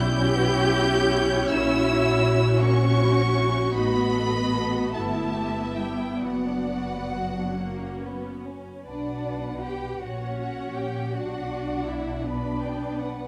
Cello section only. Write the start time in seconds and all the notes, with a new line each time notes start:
0.01 G4
1.51 E4
2.62 C#4
3.75 B3
4.94 A3
5.79 G3
6.23 F#3
8.85 D4
9.61 G4
10.01 F#4
10.39 F#4
10.77 G4
11.14 F#4
11.88 E4
12.24 D4